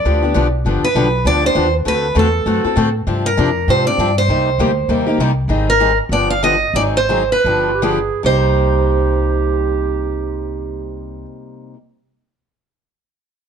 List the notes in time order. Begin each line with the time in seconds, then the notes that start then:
Already playing: D5
0.05 D2 D3 F3 B3 D4 G4
0.22 B3 D4 G4
0.34 B1 D3 F3 B3 D4 G4
0.65 G1 D3 F3 B3 D4 G4
0.83 B4, muted upright bass stroke
0.95 B1 D3 F3 B3 D4 G4
1.25 D2 D3 F3 B3 D4 G4 D5
1.44 B3 D4 G4 C5
1.55 D#2 D3 F3 B3 D4 G4
1.85 D2 D3 A3 C4 F#4 A4 B4
2.15 E2 D3 A3 C4 F#4 A4
2.19 A4
2.46 F#2 D3 A3 C4 F#4 A4
2.64 C4 F#4 A4, muted upright bass stroke
2.76 A2 D3 A3 C4 F#4 A4
3.07 G2 C3 F3 C4 D4 G4
3.26 A#4
3.37 F2 C3 F3 C4 D4 G4
3.68 G#2 C3 F3 C4 D4 G4 C5
3.86 C4 D4 G4 D5
3.98 G2 C3 F3 C4 D4 G4
4.18 C5
4.28 C2 C3 G3 A#3 D#4 G4
4.58 D2 C3 G3 A#3 D#4 G4
4.88 D#2 C3 G3 A#3 D#4 G4
5.07 A#3 D#4 G4
5.18 C2 C3 G3 A#3 D#4 G4
5.48 G#1 D#3 G3 C4 D#4 G#4
5.70 A#4
5.80 D#3 G3 C4 D#4 G#4
6.09 G1 D3 F3 B3 D4 G4 D5
6.30 F5
6.43 D3 F3 B3 D4 G4 D#5
6.74 G#1 D#3 F#3 C4 D#4 G#4 D5
6.97 C5
7.09 D#3 F#3 C4 D#4 G#4
7.32 B4
7.44 G1 D3 F3 B3 D4 G4
7.68 F4
7.75 G4
7.82 D3 F3 B3 D4 G4 G#4
8.23 C2 C3 G3 A#3 D#4 G4 C5